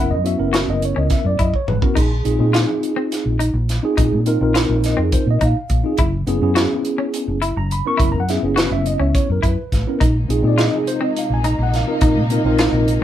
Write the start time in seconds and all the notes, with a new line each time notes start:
Already playing: F#1 B3 C#4 E4 A#4
0.11 F#2 D#5
0.24 B3 C#4 E4 F#4 E5, closed hi-hat
0.38 F#1 B3 C#4 E4 A#4
0.53 F#4, snare, closed hi-hat
0.68 F#1 D#5
0.82 C#5, closed hi-hat
0.96 C#2 C#4 D#5
1.10 E5, kick, snare, closed hi-hat
1.25 F#2 D5
1.39 F#2 E4 D#5, kick, closed hi-hat
1.54 C#5, kick
1.67 G#1 B4, mid tom
1.82 B3 C#4 E4 F#4 A#4, kick
1.95 A#1 D#4 G#4, kick, closed hi-hat, splash
2.25 A#1 C4 D#4 F4 G#4, closed hi-hat
2.39 A#2 C4 D#4 F4 G#4
2.53 F4, snare, closed hi-hat
2.83 closed hi-hat
2.96 C4
3.12 snare, closed hi-hat
3.26 A#1
3.39 D#4, closed hi-hat
3.54 A#1
3.69 snare, closed hi-hat
3.83 C4 D#4 F4 G#4
3.97 A#1 D#4, kick, closed hi-hat
4.12 A#2
4.26 C4 D#4 F4 A#4, closed hi-hat
4.41 A#1 C4 D#4 F4 A#4
4.54 F4, snare, closed hi-hat
4.69 A#1
4.84 D#5, snare, closed hi-hat
4.97 F2 C4
5.03 G#4
5.12 C5, kick, closed hi-hat
5.27 A#2 D#5
5.41 A#2 D#4 E5, kick, closed hi-hat
5.45 F5
5.56 muted fingered electric bass stroke
5.70 A#1, kick, closed hi-hat
5.84 C4 D#4 F4 G#4
5.98 F#1 E4, kick, closed hi-hat
6.27 F#1 B3 C#4 E4 G#4, closed hi-hat
6.42 F#2 B3 C#4 E4 G#4
6.55 F#4, snare, closed hi-hat
6.85 closed hi-hat
6.98 C#4
7.14 closed hi-hat
7.28 F#1
7.42 E4, closed hi-hat
7.57 F#1 A#5
7.71 B5, closed hi-hat
7.85 B3 C#4 E4 A#4 C#6
7.97 F#1 E4 B5, kick, closed hi-hat
8.12 F#2 A#5
8.20 F#5
8.29 B3 C#4 E4 G#4 E5, snare, closed hi-hat
8.42 F#1 B3 C#4 E4 G#4
8.56 F#4 B4, snare, closed hi-hat
8.71 F#1 E5
8.86 D#5, closed hi-hat
9.00 C#2 C#4 E5
9.15 C#5, kick, closed hi-hat
9.29 F#2 A#4
9.43 F#2 E4 A#4, kick, closed hi-hat
9.47 B4
9.58 muted fingered electric bass stroke
9.72 A1, kick, snare, closed hi-hat
9.87 B3 C#4 E4 A#4
9.99 A#1 C3 F3 G#3 A#3 D#4, kick, closed hi-hat
10.29 A#1 C4 D#4 F4 G#4, closed hi-hat
10.43 A#2 C4 D#4 F4 G#4
10.47 D5
10.58 F4 D#5, snare, closed hi-hat
10.76 G#4
10.87 C5, closed hi-hat
11.01 C4 D#5
11.16 F5, closed hi-hat
11.30 A#1 G#5
11.44 D#4 A#5, closed hi-hat
11.59 A#1
11.63 F#5
11.74 F5, snare, closed hi-hat
11.87 C4 D#4 F4 A#4
12.01 A#1 D#4, kick, closed hi-hat
12.16 A#2
12.30 C4 D#4 F4 A#4, closed hi-hat
12.44 A#1 C4 D#4 F4 A#4
12.59 F4, snare, closed hi-hat
12.72 A#1
12.88 closed hi-hat